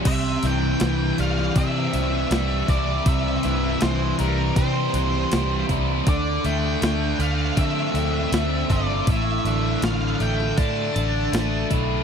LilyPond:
<<
  \new Staff \with { instrumentName = "Lead electric guitar" } { \time 4/4 \key c \mixolydian \tempo 4 = 80 e''8 g''4 f''8 e''4. d''8 | e''4 c''8 bes'8 c''4. r8 | d''8 g''4 f''8 e''4. d''8 | e''4 f''8 g''8 a''4. r8 | }
  \new Staff \with { instrumentName = "Overdriven electric guitar" } { \clef bass \time 4/4 \key c \mixolydian c8 e8 e8 g8 c'8 e8 g8 e'8 | c8 e8 e8 g8 c'8 e8 g8 e'8 | d8 a8 d8 a8 c'8 d8 a8 f'8 | a,8 d8 d8 a8 d'8 d8 a8 e'8 | }
  \new Staff \with { instrumentName = "Picked electric bass" } { \clef bass \time 4/4 \key c \mixolydian c,8 c,8 c,8 c,8 c8 c,8 c,8 c,8 | c,8 c,8 c,8 c,8 c8 c,8 c,8 c,8 | d,8 d,8 d,8 d,8 d8 d,8 d,8 g,,8 | a,,8 a,,8 a,,8 a,,8 a,8 a,,8 a,,8 b,,8 | }
  \new DrumStaff \with { instrumentName = "Drums" } \drummode { \time 4/4 <cymc hho bd>8 hho8 <hho sn>8 hho16 sn16 <hho bd>8 hho8 <hho sn>8 <hho bd>8 | <hho bd>8 hho8 <hho sn>8 hho8 <hho bd>8 hho8 <hho sn>8 <hho bd>8 | <hho bd>8 hho8 <hho sn>8 hho8 <hho bd>8 hho8 <hho sn>8 <hho bd>8 | <hho bd>8 hho8 <hho sn>8 hho16 sn16 <hho bd>8 hho8 <hho sn>8 <hho bd>8 | }
>>